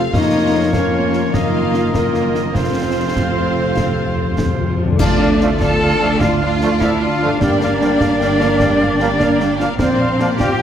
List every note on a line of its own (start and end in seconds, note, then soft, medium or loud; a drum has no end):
0.00 0.13 F2 medium
0.00 0.16 C3 soft
0.00 0.16 C4 soft
0.00 0.13 F4 medium
0.00 0.54 F4 medium
0.00 0.11 A4 medium
0.00 0.13 F5 medium
0.00 2.23 F5 medium
0.13 1.30 F1 medium
0.13 0.70 F2 medium
0.13 1.30 F2 medium
0.13 1.36 F2 medium
0.13 0.71 F3 medium
0.13 0.70 A#3 medium
0.13 0.71 A#3 medium
0.13 0.73 D#4 medium
0.13 0.70 F4 medium
0.13 2.83 A#4 medium
0.13 0.70 A#4 medium
0.13 0.70 C#5 medium
0.13 1.36 C#5 medium
0.13 0.74 D#5 medium
0.13 concert bass drum medium
0.13 snare medium
0.34 0.74 F3 soft
0.55 1.75 F4 medium
0.73 1.33 F3 medium
0.73 1.14 F3 soft
0.73 1.33 A#3 medium
0.73 1.32 C#4 medium
0.73 1.33 F4 medium
0.73 1.32 A#4 medium
0.73 1.33 C#5 medium
0.73 concert bass drum medium
0.73 snare medium
0.95 1.36 C#4 soft
1.13 5.02 F3 soft
1.13 snare soft
1.33 2.53 F#1 medium
1.33 2.53 F#2 medium
1.33 2.57 F#2 soft
1.33 1.93 D#3 medium
1.33 1.93 A#3 medium
1.33 1.94 A#3 medium
1.33 1.94 F4 medium
1.33 1.93 A#4 soft
1.33 1.93 D#5 soft
1.33 2.55 D#5 soft
1.33 1.95 F5 medium
1.33 concert bass drum medium
1.33 snare medium
1.56 1.95 F#3 soft
1.74 2.95 F4 soft
1.74 snare soft
1.94 2.54 D#3 soft
1.94 2.35 F#3 soft
1.94 2.38 A#3 medium
1.94 2.54 A#3 soft
1.94 2.55 A#3 medium
1.94 2.54 F4 soft
1.94 2.53 A#4 soft
1.94 2.55 A#4 soft
1.94 2.54 D#5 soft
1.94 concert bass drum medium
1.94 snare medium
2.14 2.57 D#4 soft
2.14 snare soft
2.35 2.57 F#3 soft
2.35 snare soft
2.53 4.79 F1 soft
2.53 2.62 F2 soft
2.53 4.79 F2 soft
2.53 3.76 F2 soft
2.53 4.78 F3 soft
2.53 4.79 C4 soft
2.53 4.75 C4 medium
2.53 4.80 C4 soft
2.53 4.75 F4 medium
2.53 4.75 C5 medium
2.53 4.80 C5 medium
2.53 4.76 C5 soft
2.53 4.75 F5 soft
2.53 4.79 F5 soft
2.53 concert bass drum medium
2.53 snare medium
2.63 2.70 F2 soft
2.71 2.78 F2 soft
2.77 2.85 F2 soft
2.77 3.15 C3 soft
2.87 2.93 F2 soft
2.94 3.01 F2 soft
2.94 4.17 F4 soft
3.03 3.07 F2 soft
3.09 3.16 F2 soft
3.16 3.24 F2 soft
3.16 3.56 C3 soft
3.16 4.75 A4 medium
3.16 concert bass drum medium
3.16 snare medium
3.25 3.31 F2 soft
3.33 3.38 F2 soft
3.37 3.46 F2 soft
3.37 3.96 C4 soft
3.47 3.54 F2 soft
3.55 3.60 F2 soft
3.55 4.37 C3 soft
3.62 3.69 F2 soft
3.70 3.75 F2 soft
3.76 3.84 F2 soft
3.76 5.01 F2 soft
3.76 concert bass drum medium
3.76 snare medium
3.85 3.91 F2 soft
3.92 3.99 F2 soft
4.00 4.07 F2 soft
4.08 4.14 F2 soft
4.15 4.22 F2 medium
4.15 4.91 F4 soft
4.23 4.29 F2 medium
4.31 4.36 F2 medium
4.37 4.45 F2 medium
4.37 4.79 C3 soft
4.37 concert bass drum medium
4.37 snare medium
4.46 4.52 F2 medium
4.53 4.59 F2 medium
4.60 4.67 F2 medium
4.60 5.02 C4 soft
4.68 4.75 F2 medium
4.77 4.84 F2 medium
4.77 5.02 C3 soft
4.83 4.91 F2 medium
4.83 7.34 D3 medium
4.87 7.27 D4 soft
4.92 4.99 F2 medium
4.92 7.31 F4 medium
4.97 7.37 D2 medium
4.97 5.57 D3 medium
4.97 5.57 D4 medium
4.97 7.41 A4 soft
4.97 5.09 D5 medium
4.97 5.19 D5 medium
4.97 5.09 F5 medium
4.97 5.18 A5 medium
4.97 concert bass drum medium
4.97 snare medium
4.97 crash medium
4.97 crash soft
5.01 5.57 A3 medium
5.01 5.19 F4 medium
5.01 5.57 D5 medium
5.19 5.40 D4 medium
5.19 5.41 A4 medium
5.19 5.30 D5 medium
5.19 5.40 F5 medium
5.19 5.30 F5 medium
5.41 5.48 F3 medium
5.41 5.49 A3 medium
5.41 5.61 F4 medium
5.41 5.50 D5 medium
5.41 5.62 D5 medium
5.41 5.51 F5 medium
5.41 5.61 A5 medium
5.41 snare medium
5.60 5.82 D4 medium
5.60 6.20 F4 medium
5.60 6.21 A4 loud
5.60 5.82 A4 medium
5.60 5.70 D5 medium
5.60 5.82 F5 medium
5.60 5.72 F5 medium
5.60 6.20 A5 medium
5.60 concert bass drum medium
5.60 snare medium
5.82 6.00 F4 medium
5.82 6.00 D5 medium
5.82 5.91 D5 medium
5.82 5.91 F5 medium
5.82 6.01 A5 medium
6.01 6.08 F3 medium
6.01 6.08 A3 medium
6.01 6.21 D4 medium
6.01 6.21 A4 medium
6.01 6.11 D5 medium
6.01 6.21 F5 medium
6.01 6.11 F5 medium
6.19 6.37 D4 medium
6.19 6.40 F4 medium
6.19 6.41 F4 medium
6.19 6.41 D5 medium
6.19 6.26 F5 medium
6.19 6.42 A5 medium
6.19 concert bass drum medium
6.19 snare medium
6.23 6.32 D5 medium
6.23 6.32 F5 medium
6.39 6.79 D4 medium
6.39 6.80 F4 loud
6.39 6.61 A4 medium
6.39 6.79 F5 medium
6.39 6.51 F5 medium
6.43 6.62 D4 medium
6.43 6.51 D5 soft
6.43 6.62 F5 medium
6.61 6.69 F3 medium
6.61 6.68 A3 medium
6.61 6.80 F4 medium
6.61 6.80 D5 medium
6.61 6.72 D5 medium
6.61 6.71 F5 medium
6.61 6.80 A5 medium
6.61 snare medium
6.79 6.99 C4 medium
6.79 7.01 D4 medium
6.79 7.00 E4 medium
6.79 7.02 A4 medium
6.79 7.01 E5 medium
6.79 6.88 F5 medium
6.79 7.01 F5 medium
6.79 concert bass drum medium
6.79 snare medium
6.83 6.92 D5 medium
7.00 7.40 D4 medium
7.00 7.41 F4 medium
7.00 7.21 F4 medium
7.00 7.11 D5 soft
7.00 7.21 D5 medium
7.00 7.40 F5 medium
7.00 7.10 F5 soft
7.00 7.21 A5 medium
7.22 9.72 G2 medium
7.22 7.29 F3 medium
7.22 7.29 A3 medium
7.22 7.42 D4 medium
7.22 7.42 A4 medium
7.22 7.31 D5 medium
7.22 7.31 F5 medium
7.22 7.42 F5 medium
7.28 9.65 D4 soft
7.33 9.70 F4 soft
7.37 9.79 A#3 medium
7.37 9.75 D4 loud
7.37 9.75 A#4 soft
7.41 9.80 G1 medium
7.41 7.60 G3 medium
7.41 9.52 D5 medium
7.41 7.60 D5 medium
7.41 7.51 D5 medium
7.41 7.52 F5 medium
7.41 7.60 G5 medium
7.41 concert bass drum medium
7.41 snare medium
7.60 7.82 A#3 medium
7.60 7.81 A#4 medium
7.60 7.71 D5 medium
7.60 7.80 F5 medium
7.60 7.72 F5 medium
7.60 snare medium
7.80 7.89 F3 medium
7.80 8.01 G3 medium
7.80 7.89 A#3 medium
7.80 7.91 D5 medium
7.80 8.02 D5 medium
7.80 7.92 F5 medium
7.80 8.00 G5 medium
7.80 snare soft
7.99 8.21 A#3 medium
7.99 8.20 A#4 medium
7.99 8.11 D5 medium
7.99 8.20 F5 medium
7.99 8.09 F5 medium
7.99 concert bass drum medium
7.99 snare medium
8.20 8.39 G3 medium
8.20 8.39 D5 medium
8.20 8.30 D5 medium
8.20 8.31 F5 medium
8.20 8.39 G5 medium
8.20 snare soft
8.38 8.48 F3 medium
8.38 8.47 A#3 medium
8.38 8.61 A#3 medium
8.38 8.60 A#4 medium
8.38 8.59 F5 medium
8.38 8.50 F5 medium
8.38 snare soft
8.44 8.52 D5 medium
8.58 8.68 D5 medium
8.58 8.80 D5 medium
8.58 8.79 G5 medium
8.58 concert bass drum medium
8.58 snare medium
8.62 8.81 G3 medium
8.62 8.70 F5 medium
8.79 9.01 A#3 medium
8.79 9.01 A#4 medium
8.79 8.89 D5 soft
8.79 8.99 F5 medium
8.79 8.89 F5 medium
8.97 9.07 F3 medium
8.97 9.18 G3 medium
8.97 9.07 A#3 medium
8.97 9.16 G5 medium
8.97 snare soft
9.02 9.10 D5 medium
9.02 9.19 D5 medium
9.02 9.10 F5 medium
9.17 9.39 A#3 medium
9.17 9.29 D5 medium
9.17 9.38 F5 medium
9.17 concert bass drum medium
9.17 snare medium
9.22 9.41 A#4 medium
9.22 9.30 F5 medium
9.38 9.60 G3 medium
9.38 9.48 D5 soft
9.38 9.59 G5 medium
9.38 snare soft
9.43 9.61 D5 soft
9.43 9.51 F5 soft
9.59 10.62 A#2 medium
9.59 9.66 F3 medium
9.59 9.76 A#3 medium
9.59 9.66 A#3 medium
9.59 9.80 A#4 medium
9.59 9.69 D5 medium
9.59 9.79 F5 medium
9.59 9.70 F5 medium
9.59 snare medium
9.66 10.62 D4 soft
9.71 10.62 F4 soft
9.76 10.62 A#1 medium
9.76 10.38 F3 medium
9.76 9.97 A#3 medium
9.76 10.38 C4 medium
9.76 10.62 A#4 soft
9.76 9.97 C5 medium
9.76 10.37 C5 medium
9.76 concert bass drum medium
9.76 snare medium
9.81 9.99 D5 medium
9.81 9.89 D5 medium
9.81 9.89 F5 medium
9.97 10.18 C4 medium
9.97 10.09 D5 medium
9.97 10.19 F5 medium
10.01 10.20 C5 medium
10.01 10.10 F5 medium
10.18 10.27 F3 medium
10.18 10.39 A#3 medium
10.18 10.27 D4 medium
10.18 10.39 C5 medium
10.18 10.28 D5 medium
10.18 10.40 D5 medium
10.18 10.31 F5 medium
10.18 snare soft
10.37 10.59 C4 medium
10.37 10.62 F4 medium
10.37 10.62 G4 medium
10.37 10.49 D5 medium
10.37 10.60 F5 medium
10.37 10.62 G5 medium
10.37 concert bass drum medium
10.37 snare medium
10.42 10.61 C5 medium
10.42 10.51 F5 medium
10.59 10.62 A#3 medium